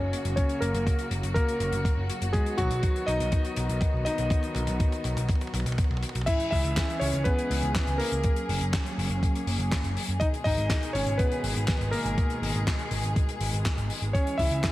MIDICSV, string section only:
0, 0, Header, 1, 2, 480
1, 0, Start_track
1, 0, Tempo, 491803
1, 366, Time_signature, 4, 2, 24, 8
1, 14366, End_track
2, 0, Start_track
2, 0, Title_t, "String section"
2, 0, Program_c, 0, 48
2, 0, Note_on_c, 0, 49, 86
2, 0, Note_on_c, 0, 54, 81
2, 0, Note_on_c, 0, 58, 76
2, 0, Note_on_c, 0, 66, 94
2, 2247, Note_off_c, 0, 49, 0
2, 2247, Note_off_c, 0, 58, 0
2, 2285, Note_on_c, 0, 51, 84
2, 2285, Note_on_c, 0, 59, 79
2, 6086, Note_off_c, 0, 54, 0
2, 6086, Note_off_c, 0, 66, 0
2, 6087, Note_off_c, 0, 51, 0
2, 6087, Note_off_c, 0, 59, 0
2, 6125, Note_on_c, 0, 56, 79
2, 6126, Note_on_c, 0, 52, 84
2, 6126, Note_on_c, 0, 61, 78
2, 6126, Note_on_c, 0, 68, 94
2, 8026, Note_off_c, 0, 52, 0
2, 8026, Note_off_c, 0, 56, 0
2, 8027, Note_off_c, 0, 61, 0
2, 8044, Note_on_c, 0, 58, 80
2, 8044, Note_on_c, 0, 61, 83
2, 8045, Note_on_c, 0, 54, 87
2, 9927, Note_off_c, 0, 68, 0
2, 9946, Note_off_c, 0, 54, 0
2, 9946, Note_off_c, 0, 58, 0
2, 9946, Note_off_c, 0, 61, 0
2, 9963, Note_on_c, 0, 51, 87
2, 9964, Note_on_c, 0, 47, 78
2, 9964, Note_on_c, 0, 56, 81
2, 9964, Note_on_c, 0, 68, 100
2, 13766, Note_off_c, 0, 47, 0
2, 13766, Note_off_c, 0, 51, 0
2, 13766, Note_off_c, 0, 68, 0
2, 13804, Note_on_c, 0, 68, 95
2, 13805, Note_on_c, 0, 52, 87
2, 13805, Note_on_c, 0, 61, 81
2, 14366, Note_off_c, 0, 52, 0
2, 14366, Note_off_c, 0, 56, 0
2, 14366, Note_off_c, 0, 61, 0
2, 14366, Note_off_c, 0, 68, 0
2, 14366, End_track
0, 0, End_of_file